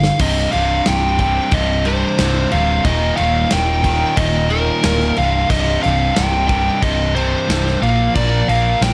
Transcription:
0.00 0.16 G2 medium
0.00 0.17 D3 medium
0.00 0.20 F5 loud
0.00 snare loud
0.19 0.46 C1 medium
0.19 0.51 C2 medium
0.19 0.52 G2 medium
0.19 0.52 C3 medium
0.19 0.51 D#5 loud
0.19 kick loud
0.19 crash loud
0.19 crash medium
0.52 0.79 C1 medium
0.52 0.85 C2 medium
0.52 0.85 G2 medium
0.52 0.85 C3 medium
0.52 0.87 F5 loud
0.52 crash medium
0.86 1.38 C1 medium
0.86 1.18 C2 loud
0.86 1.19 G2 loud
0.86 1.19 C3 loud
0.86 1.19 G5 loud
0.86 snare loud
0.86 crash medium
1.19 1.51 C2 loud
1.19 1.52 G2 loud
1.19 1.52 C3 loud
1.19 1.54 G5 loud
1.19 kick medium
1.19 crash medium
1.51 2.03 C1 loud
1.51 1.84 C2 medium
1.51 1.85 G2 loud
1.51 1.85 C3 loud
1.51 1.87 D#5 loud
1.51 kick loud
1.51 crash medium
1.85 2.18 C2 medium
1.85 2.18 G2 medium
1.85 2.19 C3 medium
1.85 2.54 C5 loud
1.85 crash medium
2.18 2.44 C1 medium
2.18 2.50 C2 loud
2.18 2.51 G2 medium
2.18 2.51 C3 loud
2.18 snare loud
2.18 crash medium
2.51 2.78 D1 medium
2.51 2.83 C2 medium
2.51 2.83 G2 medium
2.51 2.83 C3 medium
2.51 2.85 F5 medium
2.51 crash medium
2.84 3.11 D#1 loud
2.84 3.17 D#2 medium
2.84 3.18 A#2 loud
2.84 3.18 D#3 loud
2.84 3.16 D#5 loud
2.84 kick loud
2.84 crash medium
3.17 3.44 D#1 medium
3.17 3.49 D#2 medium
3.17 3.49 A#2 medium
3.17 3.50 D#3 loud
3.17 3.52 F5 medium
3.17 crash medium
3.50 4.03 D#1 loud
3.50 3.81 D#2 loud
3.50 3.82 A#2 loud
3.50 3.82 D#3 loud
3.50 3.83 G5 loud
3.50 snare loud
3.50 crash medium
3.82 4.15 D#2 medium
3.82 4.15 A#2 medium
3.82 4.16 D#3 loud
3.82 4.19 G5 loud
3.82 kick medium
3.82 crash medium
4.16 4.69 D#1 loud
4.16 4.48 D#2 loud
4.16 4.49 A#2 loud
4.16 4.49 D#3 loud
4.16 4.51 D#5 loud
4.16 kick loud
4.16 crash medium
4.49 4.81 D#2 medium
4.49 4.81 A#2 medium
4.49 4.82 D#3 medium
4.49 5.19 A#4 loud
4.49 crash medium
4.82 5.10 D1 medium
4.82 5.14 D#2 loud
4.82 5.14 A#2 loud
4.82 5.15 D#3 loud
4.82 snare loud
4.82 crash medium
5.00 snare soft
5.16 5.43 C1 medium
5.16 5.48 C2 loud
5.16 5.48 G2 loud
5.16 5.49 C3 loud
5.16 5.50 F5 loud
5.16 crash medium
5.50 5.76 C1 medium
5.50 5.81 C2 loud
5.50 5.82 G2 loud
5.50 5.82 C3 loud
5.50 5.82 D#5 loud
5.50 kick loud
5.50 crash medium
5.83 6.10 C1 medium
5.83 6.14 C2 medium
5.83 6.15 G2 loud
5.83 6.15 C3 loud
5.83 6.17 F5 medium
5.83 crash medium
6.15 6.69 C1 loud
6.15 6.47 C2 loud
6.15 6.48 G2 loud
6.15 6.48 C3 loud
6.15 6.46 G5 loud
6.15 snare loud
6.15 crash medium
6.48 6.81 C2 loud
6.48 6.82 G2 loud
6.48 6.81 C3 loud
6.48 6.83 G5 loud
6.48 kick medium
6.48 crash medium
6.82 7.34 C1 loud
6.82 7.15 C2 loud
6.82 7.15 G2 loud
6.82 7.15 C3 loud
6.82 7.13 D#5 loud
6.82 kick loud
6.82 crash medium
7.15 7.47 C2 medium
7.15 7.48 G2 medium
7.15 7.48 C3 medium
7.15 7.78 C5 loud
7.15 crash medium
7.49 7.75 C1 loud
7.49 7.80 C2 loud
7.49 7.80 G2 loud
7.49 7.80 C3 loud
7.49 snare loud
7.49 crash medium
7.67 snare soft
7.82 8.08 A#1 loud
7.82 8.14 A#2 loud
7.82 8.14 F3 loud
7.82 8.15 A#3 loud
7.82 8.15 F5 loud
7.82 crash medium
8.15 8.42 A#1 medium
8.15 8.47 A#2 loud
8.15 8.48 F3 medium
8.15 8.48 A#3 medium
8.15 8.49 D5 loud
8.15 kick loud
8.15 crash medium
8.48 8.74 A#1 medium
8.48 8.80 A#2 medium
8.48 8.81 F3 medium
8.48 8.81 A#3 loud
8.48 8.80 F5 medium
8.48 crash medium
8.81 8.93 A#1 medium
8.81 8.93 A#2 medium
8.81 8.93 F3 loud
8.81 8.93 A#3 loud
8.81 8.93 G5 medium
8.81 snare loud
8.81 crash medium

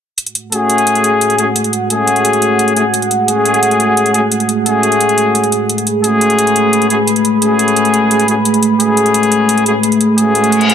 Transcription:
0.18 10.74 A3 medium
0.18 10.74 G#4 medium
0.18 5.67 F#5 medium
0.18 closed hi-hat medium
0.26 closed hi-hat soft
0.35 closed hi-hat medium
0.52 1.36 A3 medium
0.52 1.36 C#4 medium
0.52 1.36 F#4 medium
0.52 1.36 G#4 medium
0.52 closed hi-hat medium
0.70 closed hi-hat medium
0.78 closed hi-hat soft
0.87 closed hi-hat medium
0.95 closed hi-hat soft
1.04 closed hi-hat medium
1.21 closed hi-hat medium
1.30 closed hi-hat soft
1.39 1.46 A3 medium
1.39 1.46 C#4 medium
1.39 1.46 F#4 medium
1.39 1.46 G#4 medium
1.39 closed hi-hat medium
1.56 closed hi-hat medium
1.64 closed hi-hat soft
1.73 closed hi-hat medium
1.90 2.74 A3 medium
1.90 2.74 C#4 medium
1.90 2.74 F#4 medium
1.90 2.74 G#4 loud
1.90 closed hi-hat medium
2.07 closed hi-hat medium
2.16 closed hi-hat soft
2.25 closed hi-hat medium
2.33 closed hi-hat soft
2.42 closed hi-hat medium
2.59 closed hi-hat medium
2.68 closed hi-hat soft
2.76 2.84 A3 medium
2.76 2.84 C#4 medium
2.76 2.84 F#4 medium
2.76 2.84 G#4 medium
2.76 closed hi-hat medium
2.94 closed hi-hat medium
3.02 closed hi-hat soft
3.11 closed hi-hat medium
3.28 4.12 A3 medium
3.28 4.12 C#4 medium
3.28 4.12 F#4 medium
3.28 4.12 G#4 medium
3.28 closed hi-hat medium
3.45 closed hi-hat medium
3.54 closed hi-hat soft
3.63 closed hi-hat medium
3.71 closed hi-hat soft
3.80 closed hi-hat medium
3.97 closed hi-hat medium
4.06 closed hi-hat soft
4.14 4.22 A3 medium
4.14 4.22 C#4 medium
4.14 4.22 F#4 medium
4.14 4.22 G#4 medium
4.14 closed hi-hat medium
4.32 closed hi-hat medium
4.40 closed hi-hat soft
4.49 closed hi-hat medium
4.66 5.50 A3 medium
4.66 5.50 C#4 medium
4.66 5.50 F#4 medium
4.66 5.50 G#4 medium
4.66 closed hi-hat medium
4.83 closed hi-hat medium
4.92 closed hi-hat soft
5.01 closed hi-hat medium
5.09 closed hi-hat soft
5.18 closed hi-hat medium
5.35 closed hi-hat medium
5.44 closed hi-hat soft
5.52 closed hi-hat medium
5.69 10.74 B5 medium
5.69 closed hi-hat medium
5.78 closed hi-hat soft
5.87 closed hi-hat medium
6.04 6.88 A3 medium
6.04 6.88 C#4 medium
6.04 6.88 F#4 medium
6.04 6.88 G#4 loud
6.04 closed hi-hat medium
6.21 closed hi-hat medium
6.30 closed hi-hat soft
6.39 closed hi-hat medium
6.47 closed hi-hat soft
6.56 closed hi-hat medium
6.73 closed hi-hat medium
6.82 closed hi-hat soft
6.90 6.98 A3 medium
6.90 6.98 C#4 medium
6.90 6.98 F#4 medium
6.90 6.98 G#4 medium
6.90 closed hi-hat medium
7.07 closed hi-hat medium
7.16 closed hi-hat soft
7.25 closed hi-hat medium
7.42 8.26 A3 medium
7.42 8.26 C#4 medium
7.42 8.26 F#4 medium
7.42 8.26 G#4 medium
7.42 closed hi-hat medium
7.59 closed hi-hat medium
7.68 closed hi-hat soft
7.76 closed hi-hat medium
7.85 closed hi-hat soft
7.94 closed hi-hat medium
8.11 closed hi-hat medium
8.20 closed hi-hat soft
8.28 8.36 A3 medium
8.28 8.36 C#4 medium
8.28 8.36 F#4 medium
8.28 8.36 G#4 medium
8.28 closed hi-hat medium
8.45 closed hi-hat medium
8.54 closed hi-hat soft
8.63 closed hi-hat medium
8.80 9.64 A3 medium
8.80 9.64 C#4 medium
8.80 9.64 F#4 medium
8.80 9.64 G#4 loud
8.80 closed hi-hat medium
8.97 closed hi-hat medium
9.06 closed hi-hat soft
9.14 closed hi-hat medium
9.23 closed hi-hat soft
9.32 closed hi-hat medium
9.49 closed hi-hat medium
9.58 closed hi-hat soft
9.66 9.74 A3 medium
9.66 9.74 C#4 medium
9.66 9.74 F#4 medium
9.66 9.74 G#4 medium
9.66 closed hi-hat medium
9.83 closed hi-hat medium
9.92 closed hi-hat soft
10.01 closed hi-hat medium
10.18 10.74 A3 medium
10.18 10.74 C#4 medium
10.18 10.74 F#4 medium
10.18 10.74 G#4 medium
10.18 closed hi-hat medium
10.35 closed hi-hat medium
10.44 closed hi-hat soft
10.52 closed hi-hat medium
10.52 reverse cymbal medium
10.61 closed hi-hat soft
10.70 closed hi-hat medium

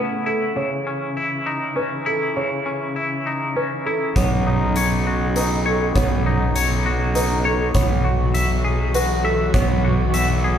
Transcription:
0.00 0.27 A2 soft
0.00 7.71 C#3 soft
0.00 0.53 A3 soft
0.00 0.53 B3 soft
0.00 0.57 B3 soft
0.00 0.87 C#4 soft
0.00 0.26 E4 soft
0.00 0.53 E4 soft
0.00 0.27 B4 soft
0.26 1.16 E4 soft
0.26 0.57 A4 soft
0.56 2.06 C#3 soft
0.56 4.13 E3 soft
0.56 1.17 C#5 soft
0.87 1.76 C#4 soft
1.17 2.05 E4 soft
1.46 2.99 D#4 soft
1.76 2.66 C#4 soft
1.76 2.07 B4 soft
2.06 2.95 E4 soft
2.06 2.37 A4 soft
2.36 3.86 C#3 soft
2.36 2.97 C#5 medium
2.66 3.56 C#4 soft
2.96 3.85 E4 soft
3.26 4.47 D#4 soft
3.56 4.20 C#4 soft
3.56 3.86 B4 soft
3.86 4.16 E4 soft
3.86 4.16 A4 soft
4.16 5.92 B1 soft
4.16 7.71 F#3 soft
4.16 10.58 B3 soft
4.16 5.69 B3 soft
4.16 4.76 C#5 soft
4.16 kick medium
4.16 closed hi-hat soft
4.47 5.36 D#4 soft
4.76 5.65 C#5 soft
4.76 closed hi-hat soft
5.07 6.85 F#4 soft
5.36 6.25 D#4 soft
5.36 5.66 B4 soft
5.36 closed hi-hat soft
5.66 5.96 A4 soft
5.66 6.55 C#5 soft
5.96 7.71 B1 medium
5.96 7.48 B3 soft
5.96 6.55 C#5 medium
5.96 kick medium
5.96 closed hi-hat soft
6.26 7.14 D#4 soft
6.56 7.44 C#5 soft
6.56 closed hi-hat soft
6.86 8.05 F#4 soft
7.15 7.75 D#4 soft
7.15 7.45 B4 soft
7.15 closed hi-hat soft
7.45 7.75 A4 soft
7.45 7.75 C#5 soft
7.75 9.51 B1 medium
7.75 10.58 E3 soft
7.75 10.58 F#3 soft
7.75 9.54 B3 soft
7.75 10.58 F#4 medium
7.75 8.35 C#5 medium
7.75 kick medium
7.75 closed hi-hat soft
8.05 8.94 F#4 soft
8.34 9.24 E5 soft
8.34 closed hi-hat soft
8.64 10.14 G#4 soft
8.94 9.83 F#4 soft
8.94 9.24 B4 medium
8.94 closed hi-hat soft
9.24 9.54 A4 medium
9.24 10.13 E5 soft
9.54 10.58 B1 medium
9.54 10.58 B3 soft
9.54 10.14 C#5 medium
9.54 kick medium
9.54 closed hi-hat soft
9.85 10.58 F#4 soft
10.14 10.58 E5 medium
10.14 closed hi-hat soft
10.44 10.58 G#4 soft

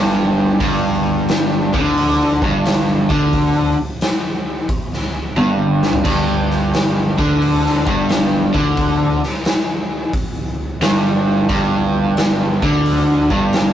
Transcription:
0.00 0.57 G1 medium
0.00 0.60 G2 loud
0.60 1.70 G1 medium
0.60 1.73 G2 loud
0.60 kick loud
0.60 open hi-hat medium
1.29 snare loud
1.29 open hi-hat medium
1.74 2.38 D2 medium
1.74 2.41 D3 loud
1.74 kick loud
1.98 open hi-hat medium
2.42 3.06 G1 medium
2.42 3.09 G2 loud
2.42 kick loud
2.66 snare loud
2.66 open hi-hat medium
3.10 3.74 D2 medium
3.10 3.77 D3 loud
3.10 kick loud
3.33 kick medium
3.33 open hi-hat medium
4.01 snare medium
4.01 open hi-hat medium
4.69 kick loud
4.69 open hi-hat soft
4.93 snare soft
5.37 6.01 G1 medium
5.37 6.03 G2 medium
5.37 high tom medium
5.83 snare medium
5.93 floor tom medium
6.05 7.14 G1 medium
6.05 7.17 G2 medium
6.05 kick loud
6.05 open hi-hat soft
6.05 crash medium
6.51 snare soft
6.74 snare loud
6.74 open hi-hat soft
7.18 7.83 D2 medium
7.18 7.85 D3 loud
7.18 kick medium
7.42 open hi-hat medium
7.66 snare soft
7.87 8.51 G1 medium
7.87 8.53 G2 loud
7.87 kick loud
8.09 snare loud
8.09 open hi-hat medium
8.54 9.19 D2 medium
8.54 9.21 D3 loud
8.54 kick medium
8.77 kick loud
8.77 open hi-hat medium
9.23 snare soft
9.45 snare loud
9.45 open hi-hat medium
10.13 kick loud
10.13 open hi-hat medium
10.81 11.46 G1 medium
10.81 11.48 G2 loud
10.81 snare loud
10.81 open hi-hat medium
11.49 12.59 G1 medium
11.49 12.61 G2 medium
11.49 kick loud
11.49 open hi-hat medium
12.17 snare loud
12.17 open hi-hat soft
12.62 13.27 D2 medium
12.62 13.30 D3 loud
12.62 kick medium
12.86 open hi-hat medium
13.30 13.73 G1 medium
13.30 13.73 G2 loud
13.30 kick loud
13.53 snare loud
13.53 open hi-hat medium

